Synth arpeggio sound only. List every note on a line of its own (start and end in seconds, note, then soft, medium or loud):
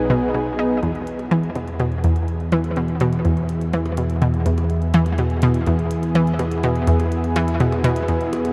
0.10 0.20 B2 loud
0.34 0.51 B2 medium
0.59 0.75 D#4 medium
0.83 0.93 E2 medium
1.31 1.48 E3 loud
1.56 1.72 B2 medium
1.80 1.96 B2 loud
2.04 2.14 E2 medium
2.52 2.69 E3 loud
2.77 2.93 B2 medium
3.01 3.17 B2 loud
3.25 3.35 E2 medium
3.74 3.90 E3 medium
3.98 4.14 B2 medium
4.22 4.38 B2 loud
4.46 4.56 E2 medium
4.94 5.10 E3 loud
5.19 5.35 B2 medium
5.43 5.59 B2 loud
5.67 5.77 E2 medium
6.15 6.31 E3 loud
6.39 6.56 B2 medium
6.64 6.80 B2 loud
6.88 6.97 E2 medium
7.36 7.52 E3 loud
7.60 7.77 B2 medium
7.84 8.01 B2 loud
8.09 8.18 E2 medium